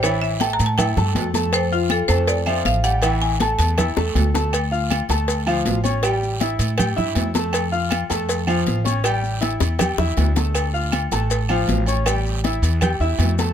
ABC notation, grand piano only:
X:1
M:4/4
L:1/8
Q:1/4=160
K:Dm
V:1 name="Grand piano"
[E,Ee]2 [A,Aa]2 [Eee'] [A,Aa]2 [A,Aa]- | [A,Aa] [Fff']2 [A,Aa]2 [F,Ff]2 [G,Gg] | [E,Ee]2 [A,Aa]2 [Eee'] [A,Aa]2 [A,Aa] | z [Fff']2 [A,Aa]2 [F,Ff]2 [^C^c^c'] |
[G,Gg]2 [Eee']2 [Ggg'] [Eee']2 [A,Aa]- | [A,Aa] [Fff']2 [A,Aa]2 [F,Ff]2 [^C^c^c'] | [G,Gg]2 [Eee']2 [Ggg'] [Eee']2 [A,Aa]- | [A,Aa] [Fff']2 [A,Aa]2 [F,Ff]2 [^C^c^c'] |
[G,Gg]2 [Eee']2 [Ggg'] [Eee']2 [A,Aa] |]